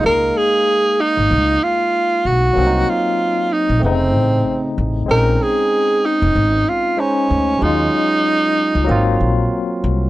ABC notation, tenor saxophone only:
X:1
M:4/4
L:1/8
Q:"Swing 16ths" 1/4=95
K:Db
V:1 name="Tenor saxophone"
B A2 E2 F2 G- | G F2 E C3 z | B A2 E2 F D2 | E6 z2 |]